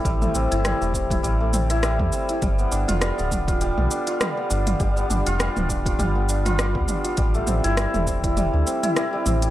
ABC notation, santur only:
X:1
M:4/4
L:1/16
Q:"Swing 16ths" 1/4=101
K:Am
V:1 name="Santur"
G, A, C E G, A, C E G, A, C E G, A, C E | G, B, D F G, B, D F G, B, D F G, B, D F | G, B, D F G, B, D F G, B, D F G, B, D F | G, A, C E G, A, C E G, A, C E G, G, C E |]